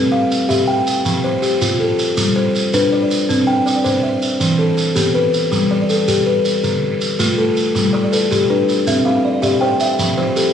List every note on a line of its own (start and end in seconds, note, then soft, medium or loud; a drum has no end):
0.00 0.31 C4 medium
0.00 0.12 B4 medium
0.12 0.68 F5 medium
0.31 shekere medium
0.49 0.87 G4 medium
0.49 1.05 E5 medium
0.49 shekere medium
0.67 1.24 G5 medium
0.87 shekere medium
1.05 1.43 F3 medium
1.05 shekere medium
1.24 1.80 C5 medium
1.42 1.98 G4 medium
1.42 shekere medium
1.61 1.99 F4 medium
1.61 shekere medium
1.80 2.36 A4 medium
1.99 shekere medium
2.17 2.54 G3 medium
2.17 shekere medium
2.36 2.92 C5 medium
2.55 shekere medium
2.73 3.11 D4 medium
2.73 3.29 B4 medium
2.73 shekere medium
2.92 3.48 D5 medium
3.11 shekere medium
3.29 3.66 C4 medium
3.29 shekere medium
3.47 4.03 G5 medium
3.66 4.22 D5 medium
3.66 shekere medium
3.84 4.41 C5 medium
3.84 shekere medium
4.03 4.59 E5 medium
4.22 shekere medium
4.40 4.78 E3 medium
4.40 shekere medium
4.59 5.15 A4 medium
4.77 shekere medium
4.95 5.33 B3 medium
4.95 5.52 G4 medium
4.95 shekere medium
5.14 5.71 B4 medium
5.34 shekere medium
5.52 5.89 G3 medium
5.52 shekere medium
5.71 6.27 D5 medium
5.89 6.45 A4 medium
5.89 shekere medium
6.08 6.45 G4 medium
6.08 shekere medium
6.26 6.82 B4 medium
6.45 shekere medium
6.64 7.01 D3 medium
6.64 shekere medium
7.01 shekere medium
7.19 7.57 A3 medium
7.19 7.75 F4 medium
7.19 shekere medium
7.38 7.94 A4 medium
7.57 shekere medium
7.75 8.13 G3 medium
7.75 shekere medium
7.93 8.31 G3 medium
7.93 8.49 D5 medium
8.12 8.68 A4 medium
8.12 8.69 B4 medium
8.12 shekere medium
8.31 8.68 G4 medium
8.31 8.87 G4 medium
8.31 shekere medium
8.49 8.87 D4 medium
8.49 9.06 B4 medium
8.69 shekere medium
8.87 9.24 C4 medium
8.87 9.25 E5 medium
8.87 shekere medium
9.05 9.43 C4 medium
9.05 9.61 F5 medium
9.25 9.42 D5 medium
9.42 9.80 G4 medium
9.42 9.99 D5 medium
9.42 9.99 E5 medium
9.42 shekere medium
9.61 9.99 C5 medium
9.61 10.17 G5 medium
9.80 10.37 E5 medium
9.80 shekere medium
9.99 10.36 F3 medium
9.99 shekere medium
10.18 10.53 F3 medium
10.18 10.53 C5 medium
10.36 10.53 G4 medium
10.36 10.53 A4 medium
10.36 shekere medium